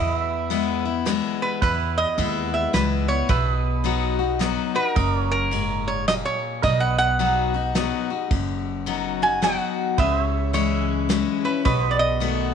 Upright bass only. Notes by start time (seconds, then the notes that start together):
Already playing: E2
1.62 E2
2.18 D#2
2.74 C#2
3.29 B1
4.96 F#1
6.64 B1
8.31 F#1
9.98 C#2
11.66 B1